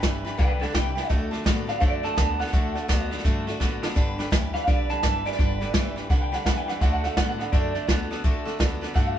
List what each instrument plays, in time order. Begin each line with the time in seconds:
0.02 upright bass G1, clean electric guitar G2 E3, steel-string acoustic guitar G3 D4 G4 B4, kick, snare, hi-hat pedal
0.25 clean electric guitar G2 E3, steel-string acoustic guitar D4 G4 B4, snare
0.37 upright bass C2, clean electric guitar G2 D3 B4 G5, steel-string acoustic guitar G3 D4 G4 B4, kick, snare
0.59 clean electric guitar G2 D3 A4 F#5, steel-string acoustic guitar D4 G4 B4, snare
0.72 upright bass C2, clean electric guitar G2 E3 G5, steel-string acoustic guitar G3 D4 G4 B4, kick, snare, hi-hat pedal
0.95 clean electric guitar G2 E3, steel-string acoustic guitar D4 G4 B4, snare
1.09 upright bass D2, steel-string acoustic guitar D3 A3 D4 F#4 A4, clean electric guitar D3 A3, kick, snare
1.31 clean electric guitar D3 A3, steel-string acoustic guitar D4 F#4 A4, snare
1.44 upright bass A2, clean electric guitar D3 B3, steel-string acoustic guitar A3 D4 F#4 A4, kick, snare, hi-hat pedal
1.67 clean electric guitar D3 B3 F5, steel-string acoustic guitar D4 F#4 A4, snare
1.80 upright bass F#2, steel-string acoustic guitar D3 A3 D4 F#4 A4, clean electric guitar D3 A3 D5, kick, snare
2.03 clean electric guitar D3 A3 A5, steel-string acoustic guitar D4 F#4 A4, snare
2.16 upright bass D2, clean electric guitar D3 B3, steel-string acoustic guitar A3 D4 F#4 A4, kick, snare, hi-hat pedal
2.39 clean electric guitar D3 B3 F#5, steel-string acoustic guitar D4 F#4 A4, snare
2.47 snare
2.52 upright bass D2, clean electric guitar D3 A3, steel-string acoustic guitar D3 A3 D4 F#4 A4, kick, snare
2.75 clean electric guitar D3 A3, steel-string acoustic guitar D4 F#4 A4, snare
2.88 upright bass D2, clean electric guitar D3 B3, steel-string acoustic guitar A3 D4 F#4 A4, kick, snare, hi-hat pedal
3.11 clean electric guitar D3 B3, steel-string acoustic guitar D4 F#4 A4, snare
3.18 snare
3.24 upright bass G2, clean electric guitar D3 A3, steel-string acoustic guitar D3 A3 D4 F#4 A4, kick, snare
3.47 clean electric guitar D3 A3, steel-string acoustic guitar D4 F#4 A4, snare
3.60 upright bass A1, clean electric guitar D3 B3, steel-string acoustic guitar A3 D4 F#4 A4, kick, snare, hi-hat pedal
3.82 clean electric guitar D3 B3, steel-string acoustic guitar D4 F#4 A4, snare
3.95 upright bass G1, clean electric guitar G2 D3, steel-string acoustic guitar G3 D4 G4 B4, kick, snare
4.18 clean electric guitar G2 D3, steel-string acoustic guitar D4 G4 B4, snare
4.31 upright bass D2, clean electric guitar G2 E3, steel-string acoustic guitar G3 D4 G4 B4, kick, snare, hi-hat pedal
4.53 clean electric guitar G2 E3 F5, steel-string acoustic guitar D4 G4 B4, snare
4.67 upright bass B1, clean electric guitar G2 D3 D5, steel-string acoustic guitar G3 D4 G4 B4, kick, snare
4.89 clean electric guitar G2 D3 A5, steel-string acoustic guitar D4 G4 B4, snare
5.03 upright bass G1, clean electric guitar G2 E3, steel-string acoustic guitar G3 D4 G4 B4, kick, snare, hi-hat pedal
5.25 clean electric guitar G2 E3 D5, steel-string acoustic guitar D4 G4 B4, snare
5.32 snare
5.39 upright bass G1, clean electric guitar G2 D3, steel-string acoustic guitar G3 D4 G4 B4, kick, snare
5.60 clean electric guitar G2 D3, steel-string acoustic guitar D4 G4 B4, snare
5.73 upright bass G1, clean electric guitar G2 E3, steel-string acoustic guitar G3 D4 G4 B4, kick, snare, hi-hat pedal
5.96 clean electric guitar G2 E3, steel-string acoustic guitar D4 G4 B4, snare
6.09 upright bass C2, clean electric guitar G2 D3 F#5, steel-string acoustic guitar G3 D4 G4 B4, kick, snare
6.22 clean electric guitar G5
6.32 clean electric guitar G2 D3 F#5, steel-string acoustic guitar D4 G4 B4, snare
6.45 upright bass E2, clean electric guitar G2 E3 F#5, steel-string acoustic guitar G3 D4 G4 B4, kick, snare, hi-hat pedal
6.57 clean electric guitar G5
6.67 clean electric guitar G2 E3 F#5, steel-string acoustic guitar D4 G4 B4, snare
6.80 upright bass D2, clean electric guitar D3 A3 F#5, steel-string acoustic guitar D3 A3 D4 F#4 A4, kick, snare
6.93 clean electric guitar F#5
7.03 clean electric guitar D3 A3 F#5, steel-string acoustic guitar D4 F#4 A4, snare
7.17 upright bass A2, clean electric guitar D3 B3 F#5, steel-string acoustic guitar A3 D4 F#4 A4, kick, snare, hi-hat pedal
7.29 clean electric guitar F#5
7.39 clean electric guitar D3 B3 F#5, steel-string acoustic guitar D4 F#4 A4, snare
7.52 upright bass F#2, steel-string acoustic guitar D3 A3 D4 F#4 A4, clean electric guitar D3 A3 D5, kick, snare
7.74 clean electric guitar D3 A3, steel-string acoustic guitar D4 F#4 A4, snare
7.88 upright bass D2, clean electric guitar D3 B3, steel-string acoustic guitar A3 D4 F#4 A4, kick, snare, hi-hat pedal
8.11 clean electric guitar D3 B3, steel-string acoustic guitar D4 F#4 A4, snare
8.24 upright bass D2, steel-string acoustic guitar D3 A3 D4 F#4 A4, clean electric guitar D3 A3, kick, snare
8.45 clean electric guitar D3 A3, steel-string acoustic guitar D4 F#4 A4, snare
8.59 upright bass D2, clean electric guitar D3 B3, steel-string acoustic guitar A3 D4 F#4 A4, kick, snare, hi-hat pedal
8.81 clean electric guitar D3 B3, steel-string acoustic guitar D4 F#4 A4, snare
8.94 upright bass G2, steel-string acoustic guitar D3 A3 D4 F#4 A4, clean electric guitar D3 A3 F#5, kick, snare
9.07 clean electric guitar F5